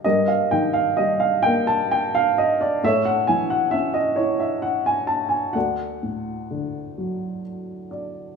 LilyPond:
<<
  \new Staff \with { instrumentName = "Upright piano" } { \time 6/8 \key d \phrygian \tempo 4. = 43 << { ees''16 f''16 g''16 f''16 ees''16 f''16 g''16 a''16 g''16 f''16 ees''16 d''16 | e''16 fis''16 aes''16 fis''16 e''16 ees''16 cis''16 e''16 fis''16 aes''16 a''16 aes''16 | fis''2 r8 d''8 | } \\ { <g' bes'>4. r4. | <a' cis''>4. r4. | <a' d''>2 r4 | } >> }
  \new Staff \with { instrumentName = "Upright piano" } { \clef bass \time 6/8 \key d \phrygian g,8 ees8 g8 bes4. | a,8 e8 cis'8 e'4. | d,8 a,8 d8 fis4. | }
>>